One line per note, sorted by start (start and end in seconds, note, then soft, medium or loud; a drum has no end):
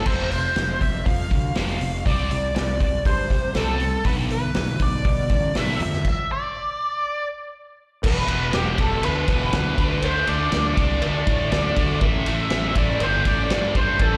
0.06 0.46 F1 medium
0.06 0.29 F2 medium
0.06 0.30 C3 medium
0.06 0.30 F3 medium
0.06 0.30 C5 medium
0.06 kick loud
0.06 crash loud
0.31 0.53 F2 medium
0.31 0.54 C3 medium
0.31 0.82 C5 loud
0.31 open hi-hat soft
0.56 0.76 F1 medium
0.56 0.79 F2 medium
0.56 0.79 C3 medium
0.56 snare loud
0.56 open hi-hat medium
0.81 1.01 F1 medium
0.81 1.04 F2 medium
0.81 1.04 C3 medium
0.81 1.05 E5 medium
0.81 kick medium
0.81 open hi-hat medium
1.06 1.28 F2 medium
1.06 1.26 F2 medium
1.06 1.29 C3 medium
1.06 1.56 F5 loud
1.06 kick loud
1.06 open hi-hat medium
1.31 1.51 D2 medium
1.31 1.53 F2 medium
1.31 1.54 C3 medium
1.31 kick medium
1.31 open hi-hat medium
1.55 1.76 F1 medium
1.55 1.79 F2 medium
1.55 1.80 C3 medium
1.55 1.80 F3 medium
1.55 2.03 F5 medium
1.55 snare loud
1.55 open hi-hat medium
1.81 2.01 F1 medium
1.81 2.03 F2 medium
1.81 2.04 C3 medium
1.81 open hi-hat medium
2.05 2.26 C2 medium
2.05 2.29 C3 medium
2.05 2.30 G3 medium
2.05 2.30 C4 loud
2.05 2.29 D5 loud
2.05 kick loud
2.05 open hi-hat medium
2.31 2.51 C2 medium
2.31 2.54 C3 medium
2.31 2.54 G3 medium
2.31 2.54 D5 medium
2.31 open hi-hat soft
2.55 2.95 C2 medium
2.55 2.78 C3 medium
2.55 2.79 G3 medium
2.55 3.02 D5 medium
2.55 snare loud
2.55 open hi-hat medium
2.81 3.03 C3 medium
2.81 3.04 G3 medium
2.81 kick loud
2.81 open hi-hat medium
3.05 3.25 G2 medium
3.05 3.28 C3 medium
3.05 3.28 G3 medium
3.05 3.52 C5 medium
3.05 kick loud
3.05 open hi-hat medium
3.30 3.53 C3 medium
3.30 3.50 C3 medium
3.30 3.53 G3 medium
3.30 kick medium
3.30 open hi-hat medium
3.55 3.95 C2 medium
3.55 3.79 C3 medium
3.55 3.79 G3 medium
3.55 3.79 C4 medium
3.55 4.06 A4 medium
3.55 snare loud
3.55 open hi-hat medium
3.80 4.03 C3 medium
3.80 4.04 G3 medium
3.80 open hi-hat soft
4.05 4.44 B1 medium
4.05 4.29 G2 loud
4.05 4.29 D3 medium
4.05 4.29 G3 loud
4.05 4.13 B4 medium
4.05 kick loud
4.05 open hi-hat medium
4.30 4.53 G2 medium
4.30 4.53 D3 medium
4.30 4.83 B4 medium
4.30 open hi-hat medium
4.54 4.75 B1 medium
4.54 4.78 G2 medium
4.54 4.78 D3 medium
4.54 snare loud
4.54 open hi-hat medium
4.80 5.00 B1 medium
4.80 5.03 G2 medium
4.80 5.03 D3 medium
4.80 5.52 D5 medium
4.80 kick loud
4.80 open hi-hat medium
5.05 5.28 G2 medium
5.05 5.25 B2 medium
5.05 5.28 D3 medium
5.05 kick loud
5.05 open hi-hat medium
5.29 5.50 A1 medium
5.29 5.53 G2 medium
5.29 5.53 D3 medium
5.29 kick medium
5.29 open hi-hat medium
5.55 5.75 B1 medium
5.55 5.79 G2 medium
5.55 5.79 D3 medium
5.55 5.79 G3 medium
5.55 5.79 E5 medium
5.55 snare loud
5.55 open hi-hat medium
5.80 6.00 F2 medium
5.80 6.03 G2 medium
5.80 6.03 D3 medium
5.80 6.07 E5 loud
5.80 open hi-hat medium
5.93 snare soft
6.05 6.32 E5 medium
6.05 kick medium
6.05 crash medium
6.32 7.27 D5 medium
8.03 8.25 E1 medium
8.03 8.27 E2 medium
8.03 8.28 B2 loud
8.03 8.29 E3 loud
8.03 8.56 B4 loud
8.03 kick loud
8.03 crash loud
8.03 cowbell loud
8.28 8.50 E1 medium
8.28 8.52 E2 medium
8.28 8.52 B2 medium
8.28 8.53 E3 medium
8.28 ride medium
8.53 8.75 E1 medium
8.53 8.77 E2 medium
8.53 8.78 B2 loud
8.53 8.78 E3 loud
8.53 8.80 G4 medium
8.53 snare loud
8.53 ride loud
8.53 cowbell medium
8.78 8.99 E1 loud
8.78 9.02 E2 medium
8.78 9.02 B2 medium
8.78 9.03 E3 medium
8.78 9.05 A4 medium
8.78 kick medium
8.78 ride medium
9.03 9.25 D2 loud
9.03 9.27 E2 medium
9.03 9.27 B2 medium
9.03 9.28 E3 loud
9.03 9.28 B4 medium
9.03 ride loud
9.03 cowbell medium
9.28 9.49 E1 medium
9.28 9.52 E2 medium
9.28 9.53 B2 medium
9.28 9.53 E3 loud
9.28 10.04 B4 medium
9.28 kick medium
9.28 ride medium
9.53 9.74 D2 loud
9.53 9.77 E2 medium
9.53 9.77 B2 medium
9.53 9.77 E3 medium
9.53 snare loud
9.53 ride loud
9.53 cowbell medium
9.78 9.99 D2 medium
9.78 10.02 D3 loud
9.78 10.03 A3 loud
9.78 10.04 D4 loud
9.78 kick loud
9.78 ride medium
10.02 10.23 D2 medium
10.02 10.26 D3 loud
10.02 10.28 A3 loud
10.02 10.28 D4 loud
10.02 10.27 C5 loud
10.02 ride loud
10.02 cowbell loud
10.27 10.48 D2 loud
10.27 10.51 D3 medium
10.27 10.53 A3 loud
10.27 10.52 D4 loud
10.27 11.50 D5 loud
10.27 ride medium
10.52 10.73 D2 medium
10.52 10.76 D3 loud
10.52 10.77 A3 medium
10.52 10.77 D4 loud
10.52 snare loud
10.52 ride loud
10.52 cowbell medium
10.77 10.98 C2 medium
10.77 11.01 D3 medium
10.77 11.02 A3 medium
10.77 11.02 D4 loud
10.77 kick loud
10.77 ride medium
11.02 11.23 D2 loud
11.02 11.25 D3 loud
11.02 11.26 A3 medium
11.02 11.26 D4 loud
11.02 ride medium
11.02 cowbell medium
11.26 11.48 A2 loud
11.26 11.50 D3 loud
11.26 11.52 A3 medium
11.26 11.52 D4 loud
11.26 kick medium
11.26 ride medium
11.51 11.73 D2 loud
11.51 11.74 D3 medium
11.51 11.76 A3 medium
11.51 11.76 D4 loud
11.51 11.98 D5 loud
11.51 snare loud
11.51 ride loud
11.51 cowbell medium
11.76 11.98 D2 medium
11.76 11.99 D3 medium
11.76 12.01 A3 medium
11.76 12.00 D4 loud
11.76 kick medium
11.76 ride medium
12.01 12.22 A1 medium
12.01 12.26 A2 medium
12.01 12.27 E3 loud
12.01 12.27 A3 loud
12.01 12.27 E5 loud
12.01 kick loud
12.01 ride medium
12.01 cowbell medium
12.26 12.48 A1 medium
12.26 12.50 A2 medium
12.26 12.51 E3 loud
12.26 12.52 A3 medium
12.26 12.77 E5 loud
12.26 ride medium
12.50 12.73 A1 medium
12.50 12.76 A2 medium
12.50 12.76 E3 loud
12.50 12.76 A3 loud
12.50 snare loud
12.50 ride loud
12.50 cowbell medium
12.75 12.96 A1 loud
12.75 13.00 A2 medium
12.75 13.01 E3 medium
12.75 13.01 A3 medium
12.75 13.00 D5 loud
12.75 kick medium
12.75 ride medium
13.00 13.22 G1 medium
13.00 13.24 A2 medium
13.00 13.25 E3 loud
13.00 13.25 A3 loud
13.00 13.28 C5 loud
13.00 ride loud
13.00 cowbell medium
13.25 13.46 A1 medium
13.25 13.49 A2 medium
13.25 13.51 E3 loud
13.25 13.50 A3 medium
13.25 13.73 D5 loud
13.25 kick medium
13.25 ride medium
13.50 13.71 G2 medium
13.50 13.74 A2 medium
13.50 13.75 E3 medium
13.50 13.75 A3 medium
13.50 snare loud
13.50 ride loud
13.50 cowbell medium
13.75 13.96 G2 medium
13.75 13.99 A2 medium
13.75 14.00 E3 loud
13.75 13.99 A3 loud
13.75 14.01 C5 medium
13.75 kick medium
13.75 ride medium
13.99 14.17 A1 medium
13.99 14.17 A2 loud
13.99 14.17 E3 loud
13.99 14.17 A3 loud
13.99 14.17 A4 loud
13.99 kick loud
13.99 ride loud
13.99 cowbell medium